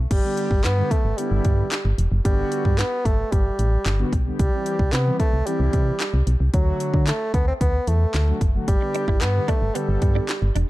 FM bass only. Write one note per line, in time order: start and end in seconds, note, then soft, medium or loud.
0.11 0.20 G1 loud
0.51 0.66 G1 medium
0.64 0.83 G2 loud
1.05 1.14 G1 medium
1.31 1.41 G1 loud
1.45 1.63 G2 loud
1.85 1.94 G1 medium
1.98 2.08 E1 medium
2.12 2.21 F#1 loud
2.25 2.44 G1 loud
2.65 2.84 G2 medium
3.05 3.24 G1 medium
3.32 3.51 G1 medium
3.59 3.78 A1 loud
3.86 4.04 G1 loud
4.13 4.31 B1 medium
4.39 4.49 C2 loud
4.79 4.89 C2 medium
4.93 5.11 C3 loud
5.33 5.42 C2 medium
5.60 5.69 C2 loud
5.73 5.92 C3 medium
6.14 6.23 C2 medium
6.27 6.36 B1 medium
6.40 6.50 C2 medium
6.54 6.72 D2 loud
6.94 7.12 D3 loud
7.34 7.52 D2 medium
7.61 7.79 D2 medium
7.88 8.06 E2 medium
8.14 8.33 D2 medium
8.41 8.60 F#1 medium
8.68 8.77 G1 loud
9.08 9.23 G1 medium
9.22 9.40 G2 loud
9.62 9.71 G1 medium
9.89 9.98 G1 loud
10.02 10.21 G2 loud
10.42 10.51 G1 medium
10.55 10.65 E1 loud